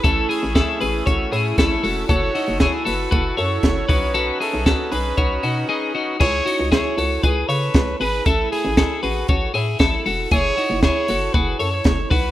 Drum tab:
CC |--------|--------|--------|x-------|
HH |xoxoxoxo|xoxoxoxo|xoxoxo--|-oxoxoxo|
SD |--o---o-|--o---o-|--o-----|--o---o-|
BD |o-o-o-o-|o-o-o-oo|--o-o---|o-o-o-o-|

CC |--------|--------|
HH |xoxoxoxo|xoxoxoxo|
SD |--o---o-|--o---o-|
BD |o-o-o-o-|o-o-o-oo|